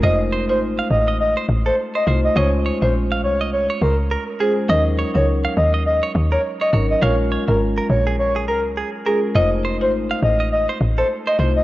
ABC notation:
X:1
M:4/4
L:1/16
Q:"Swing 16ths" 1/4=103
K:Fphr
V:1 name="Soft synth lead"
e z2 c z2 e z e z2 c z e z e | d z2 c z2 d z d z B z3 A z | e z2 d z2 e z e z2 d z e z e | d z2 B z2 d z d z B z3 A z |
e z2 c z2 e z e z2 c z e z e |]
V:2 name="Clean electric guitar"
e z c z2 f z e z c z =A z c c z | e z d z2 f z e z d c z B z A z | e z d z2 f z e z d z B z d d z | f z d z2 B z A z A B z A z B z |
e z c z2 f z e z c z =A z c c z |]
V:3 name="Marimba"
[=A,EFc]3 [A,EFc] z8 z2 [A,EFc]2 | [A,DFc]3 [A,DFc] z8 z2 [A,DFc]2 | [G,DEB]3 [G,DEB] z8 z2 [G,DEB]2 | [A,DFB]3 [A,DFB] z8 z2 [A,DFB]2 |
[=A,EFc]3 [A,EFc] z8 z2 [A,EFc]2 |]
V:4 name="Log drum bass" clef=bass
F,,,3 A,,,3 =A,,,4 A,,,2 z2 C,,2 | D,,3 B,,,3 C,,4 D,,3 z3 | E,,3 D,,3 E,,4 E,,2 z2 A,,,2 | B,,,3 A,,,3 B,,,4 D,,3 z3 |
F,,,3 A,,,3 =A,,,4 A,,,2 z2 C,,2 |]